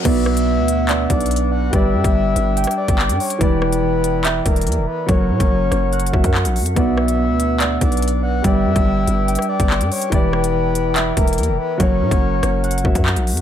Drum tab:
CC |x-----------------------------------------------------------------------------------------------|------------------------------------------------------------------------------------------------|------------------------------------------------------------------------------------------------|------------------------------------------------------------------------------------------------|
HH |x-----------------x-----------------x-----------x-----------x-----x--x--x--x--------------------|x-----------------x-----------------x-----------x---x---x---------x-----------x-----o-----x-----|x-----------------x-----------------x-----------x-----------x-----x--x--x--x--------------------|x-----------------x-----------------x-----------x---x---x---------x-----------x-----o-----x-----|
CP |------------------------------------------------x-----------------------------------------------|------------------------------------------------------------------------x-----------------------|------------------------------------------------x-----------------------------------------------|------------------------------------------------------------------------x-----------------------|
SD |------------r-----------------------------------------------------------------------------------|------------------------------------------------------r-----------------------------------------|------------r-----------------------------------------------------------------------------------|------------------------------------r-----------------------------------------------------------|
BD |o-----------------------------------------------------------o-----------------------------------|o-----------------o-----------------------------------------------o-----------------------------|o-----------------------------------------------------------o-----------------------------------|o-----------------o-----------------------------------------o-----o-----------------------------|

CC |------------------------------------------------------------------------------------------------|------------------------------------------------------------------------------------------------|------------------------------------------------------------------------------------------------|------------------------------------------------------------------------------------------------|
HH |x-----------------x-----------------x-----------x-----------x-----x--x--x--x--------------------|x-----------------x-----------------x-----------x---x---x---------x-----------x-----o-----x-----|x-----------------x-----------------x-----------x-----------x-----x--x--x--x--------------------|x-----------------x-----------------x-----------x---x---x---------x-----------x-----o-----x-----|
CP |------------------------------------------------x-----------------------------------------------|------------------------------------------------------------------------x-----------------------|------------------------------------------------x-----------------------------------------------|------------------------------------------------------------------------x-----------------------|
SD |------------r-----------------------------------------------------------------------------------|------------------------------------------------------r-----------------------------------------|------------r-----------------------------------------------------------------------------------|------------------------------------r-----------------------------------------------------------|
BD |o-----------------------------------------------------------o-----------------------------------|o-----------------o-----------------------------------------------o-----------------------------|o-----------------------------------------------------------o-----------------------------------|o-----------------o-----------------------------------------o-----o-----------------------------|